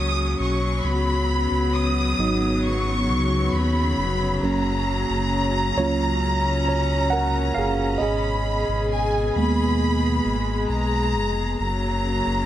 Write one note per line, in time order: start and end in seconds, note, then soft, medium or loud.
0.00 0.35 C#2 medium
0.00 0.81 C#3 medium
0.00 0.86 F#3 soft
0.00 7.97 F#3 medium
0.00 0.86 A#3 soft
0.00 0.81 C#4 medium
0.00 0.86 C#4 medium
0.00 0.37 D#6 loud
0.39 0.81 B1 loud
0.39 0.82 C#6 loud
0.84 1.47 C#2 loud
0.84 7.97 C#3 medium
0.84 4.39 B3 medium
0.84 1.74 B5 loud
1.51 2.14 C#2 loud
1.75 2.64 D#6 loud
2.18 3.09 G#1 medium
2.18 2.78 F#3 medium
2.18 2.79 B3 medium
2.18 2.79 D#4 medium
2.65 3.50 C#6 loud
3.08 3.50 C#2 loud
3.52 3.94 D#2 loud
3.52 4.43 B5 loud
3.98 4.39 F1 medium
4.42 5.05 F#1 loud
4.42 5.02 F#3 medium
4.42 5.03 A#3 medium
4.42 9.76 C#4 medium
4.42 5.03 C#4 medium
4.42 8.01 A#5 loud
5.09 5.73 F#1 loud
5.76 7.52 C#2 medium
5.76 6.18 F#3 medium
5.76 6.19 A#3 soft
5.76 6.19 C#4 medium
5.76 6.64 F4 medium
5.76 6.67 C#5 loud
6.65 7.09 C#5 medium
6.65 7.12 A#5 loud
7.10 7.54 A#4 medium
7.10 7.57 F#5 loud
7.54 7.98 F#1 loud
7.54 7.78 G#4 medium
7.54 7.75 F5 loud
7.98 8.64 G#1 loud
7.98 11.56 B2 medium
7.98 11.56 G#4 medium
7.98 9.74 D#5 medium
7.98 8.90 B5 loud
8.02 9.77 G#4 medium
8.68 9.31 G#1 loud
8.90 9.32 G#5 medium
9.34 10.21 D#2 medium
9.34 10.66 G#3 medium
9.34 10.66 A#3 medium
9.34 10.67 B3 medium
9.34 10.65 B5 loud
9.80 11.57 G#3 medium
10.25 10.66 G#1 loud
10.69 11.16 B1 loud
10.69 11.55 A#5 loud
11.15 11.56 F1 medium
11.58 12.22 F#1 loud
11.58 12.46 C#3 medium
11.58 12.46 F#3 medium
11.58 12.46 A#3 medium
11.58 12.46 A#5 loud
12.26 12.46 F#1 loud